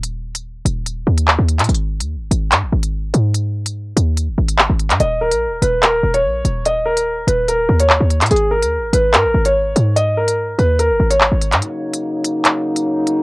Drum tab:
HH |x-----x-----x---x-----x-----x-xx|xx----x-----x---x-----x-----x---|x-----x-----x---x-----x-----x-x-|x-----x-----x---x-----x-----x---|
CP |------------------------x-----x-|----------------x---------------|------------------------x-----x-|----------------x---------------|

HH |x-----x-----x---x-----x-----x-xx|xx----x-----x---x-----x-----x---|x-----x-----x---x-----x-----x-x-|x-----x-----x---x-----x-----x---|
CP |------------------------x-----x-|----------------x---------------|------------------------x-----x-|----------------x---------------|